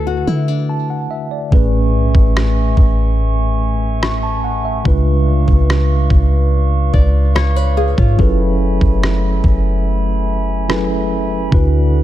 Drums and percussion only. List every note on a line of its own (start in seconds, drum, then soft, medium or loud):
1.52 kick loud
2.15 kick medium
2.37 cross-stick loud
2.77 kick medium
4.03 cross-stick loud
4.85 kick loud
5.48 kick medium
5.70 cross-stick medium
6.10 kick medium
6.94 kick medium
7.36 cross-stick loud
7.98 kick medium
8.19 kick loud
8.81 kick medium
9.04 cross-stick loud
9.44 kick medium
10.70 cross-stick loud
11.52 kick loud